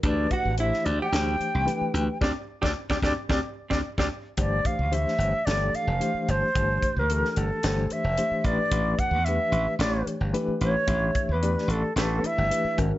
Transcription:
<<
  \new Staff \with { instrumentName = "Flute" } { \time 4/4 \key a \phrygian \tempo 4 = 111 d''8 fis''8 e''8 d''16 g''2~ g''16 | d''16 r8 d''16 r16 d''16 d''16 r16 d''16 r8 d''16 r16 d''16 r8 | d''8 f''8 e''4 d''8 f''4 c''8~ | c''8. bes'8. a'4 e''4 d''8~ |
d''8 fis''8 e''4 d''8 r4 cis''8~ | cis''8. b'8. a'8 a'8 e''4 r8 | }
  \new Staff \with { instrumentName = "Hollow-body jazz guitar" } { \time 4/4 \key a \phrygian d'8 fis'8 e'8 d'16 g'2~ g'16 | <c' d' g'>16 r8 <c' d' g'>16 r16 <c' d' g'>16 <c' d' g'>16 r16 <c' d' g'>16 r8 <c' d' g'>16 r16 <c' d' g'>16 r8 | r1 | r1 |
r1 | r2 a8 e'4 r8 | }
  \new Staff \with { instrumentName = "Reed electric piano" } { \time 4/4 \key a \phrygian <e a d' g' b'>4 <e a d' g' c''>4 <e a d' g' c''>4 <e a d' g' b'>4 | <c' d' g'>16 r8 <c' d' g'>16 r16 <c' d' g'>16 <c' d' g'>16 r16 <c' d' g'>16 r8 <c' d' g'>16 r16 <c' d' g'>16 r8 | <e a d' g' c''>4 <e a d' g' c''>4 <e a d' g' a'>4 <e a d' g' c''>4 | <e a d' g' c''>4 <e a d' g' a'>4 <e a d' g' c''>4 <e a d' g' c''>8 <e a d' g' b'>8~ |
<e a d' g' b'>4 <e a d' g' b'>4 <e a d' g' cis''>4 <e a d' g' b'>4 | <e a d' g' e''>4 <e a d' g' d''>4 <e a d' g' b'>4 <e a d' g' b'>8 <ees aes des' ges' bes'>8 | }
  \new Staff \with { instrumentName = "Slap bass" } { \clef bass \time 4/4 \key a \phrygian d,8 r16 a,,8 r16 d,16 r16 d,8 r16 c,16 r8 d,16 r16 | d,16 r8 d,16 r16 d,16 d,16 r16 d,16 r8 d,16 r16 d,16 r8 | g,,8 r16 d,8 r16 g,,16 r16 g,,8 r16 f,,16 r8 g,,16 r16 | g,,8 r16 d,8 r16 g,,16 r16 g,,8 r16 f,,16 r8 a,,16 r16 |
a,,8 r16 e,8 r16 a,,16 r16 a,,8 r16 g,,16 r8 a,,16 r16 | a,,8 r16 e,8 r16 a,,16 r16 a,,8 r16 g,,16 r8 aes,,16 r16 | }
  \new DrumStaff \with { instrumentName = "Drums" } \drummode { \time 4/4 <hh bd>8 <hh bd>8 hh16 sn16 hh8 <hh sn>8 hh8 hh8 hh8 | <bd sn>8. <bd sn>16 r16 <bd sn>16 <bd sn>8 <bd sn>8. <bd sn>16 r16 <bd sn>8. | <hh bd>8 <hh bd>8 hh16 sn16 hh8 <hh sn>8 hh8 hh8 hh8 | <hh bd>8 <hh bd>8 hh16 sn16 hh8 <hh sn>8 hh8 hh8 <hh bd>8 |
<hh bd>8 <hh bd>8 hh8 hh8 <hh sn>8 hh8 hh8 hh8 | <hh bd>8 <hh bd>8 hh16 sn16 hh8 <hh sn>8 hh8 hh8 <hh bd>8 | }
>>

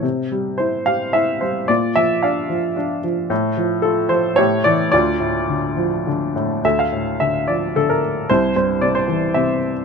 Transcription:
<<
  \new Staff \with { instrumentName = "Upright piano" } { \time 3/4 \key d \minor \tempo 4 = 110 << { r4 c''8 f''8 e''8 c''8 | d''8 e''8 f''4. r8 | r4 a'8 c''8 cis''8 d''8 | d''2~ d''8 r8 |
e''16 f''8. e''8 d''8 a'16 bes'8. | c''8 c''8 d''16 c''8. e''8. r16 | } \\ { r2. | f'4 d''4. r8 | r2 g'4 | f'2~ f'8 r8 |
a'4. r4. | e'4. r4. | } >> }
  \new Staff \with { instrumentName = "Upright piano" } { \clef bass \time 3/4 \key d \minor c8 g8 e'8 g'8 e'8 g8 | bes,8 f8 d'8 f8 d'8 f8 | a,8 f8 f'8 f8 a,8 e8 | d,8 a,8 d8 f8 d8 a,8 |
d,8 a,8 d8 f8 d4 | c,8 g,8 c8 e8 c4 | }
>>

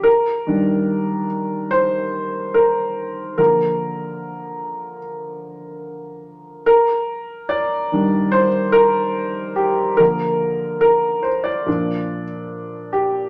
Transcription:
<<
  \new Staff \with { instrumentName = "Grand piano" } { \time 4/4 \key ees \major \tempo 4 = 72 bes'4. r8 c''4 bes'4 | bes'2 r2 | bes'4 d''4 c''8 bes'4 g'8 | bes'4 bes'8 c''16 d''4.~ d''16 g'8 | }
  \new Staff \with { instrumentName = "Grand piano" } { \clef bass \time 4/4 \key ees \major r8 <ees g d'>4. r2 | <d f bes>1 | r4. <ees g d'>8 r2 | <d f bes>4. r8 <bes, f d'>8 r4. | }
>>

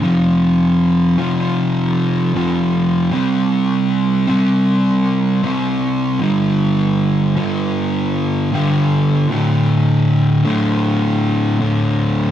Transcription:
\new Staff \with { instrumentName = "Distorted electric guitar" } { \clef bass \time 4/4 \key d \minor \tempo 4 = 78 <f, c f>4. <f, c f>4. <f, c f>4 | <c g c'>4. <c g c'>4. <c g c'>4 | <g, d g>4. <g, d g>4. <g, d g>4 | <d, a, d>4. <d, a, d>4. <d, a, d>4 | }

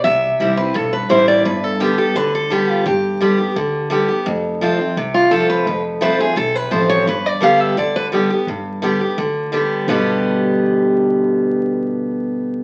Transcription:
<<
  \new Staff \with { instrumentName = "Steel-string acoustic guitar" } { \time 4/4 \key g \mixolydian \tempo 4 = 171 e''4. b'8 a'8 b'8 c''8 d''8 | b'8 a'8 g'8 a'8 b'8 a'8 g'8 f'8 | g'2. r4 | r2 r8 f'8 a'8 b'8~ |
b'8 r8 b'8 aes'8 a'8 b'8 c''8 cis''8 | b'8 d''8 f''8 e''8 d''8 b'8 r4 | r1 | b'1~ |
b'1 | }
  \new Staff \with { instrumentName = "Steel-string acoustic guitar" } { \time 4/4 \key g \mixolydian << { r4 <e g c' e'>8 <c' e'>8 r4 <e g c' e'>4 | r4 <d g b g'>8 <b g'>8 r4 <d g b g'>4 | r4 <d g b g'>8 <b g'>8 r4 <d g b g'>8 <b g'>8 | r4 <f a c' f'>8 <c' f'>8 r4 <f a c' f'>4 |
r4 <f a c' f'>8 <c' f'>8 r4 <f a c' f'>4 | r4 <d g b g'>4 r4 <d g b g'>8 <b g'>8 | r4 <d g b g'>8 <b g'>8 r4 <d g b g'>4 | <g, b, d g b g'>1~ |
<g, b, d g b g'>1 | } \\ { c2 g,2 | g,2 d2 | g,2 d2 | f,2 c2 |
f,2 c2 | g,2 d2 | g,2 d2 | r1 |
r1 | } >> }
  \new Staff \with { instrumentName = "Upright bass" } { \clef bass \time 4/4 \key g \mixolydian c,4 c,4 b,,4 a,,4 | g,,2 d,2 | g,,2 d,2 | f,,2 c,2 |
f,,2 b,,4 a,,4 | g,,2 d,2 | g,,2 d,2 | g,,1~ |
g,,1 | }
>>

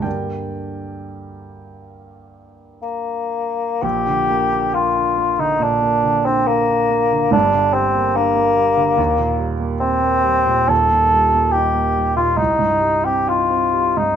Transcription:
<<
  \new Staff \with { instrumentName = "Bassoon" } { \time 4/4 \key g \minor \tempo 4 = 69 r2. bes4 | \key bes \major g'4 f'8. ees'16 d'8. c'16 bes4 | d'8 c'8 bes4.~ bes16 r16 c'4 | \key c \dorian a'4 g'8. f'16 ees'8. g'16 f'8. ees'16 | }
  \new Staff \with { instrumentName = "Grand piano" } { \time 4/4 \key g \minor <bes' d'' g''>2. r4 | \key bes \major r1 | r1 | \key c \dorian r1 | }
  \new Staff \with { instrumentName = "Grand piano" } { \clef bass \time 4/4 \key g \minor <g, d bes g'>1 | \key bes \major <bes,, bes,>16 d16 bes16 d'16 bes16 d'16 bes16 d16 bes,16 bes16 d16 d'16 bes16 d'16 bes16 d16 | <g,, g,>16 d16 g16 bes16 d'16 bes16 g16 d16 ees,16 bes,16 g16 bes16 c'16 bes16 g16 bes,16 | \key c \dorian <ees,, ees,>16 bes,16 g16 bes16 ees'16 bes16 g16 bes,16 c,16 g,16 g16 c'16 ees'16 c'16 g16 g,16 | }
>>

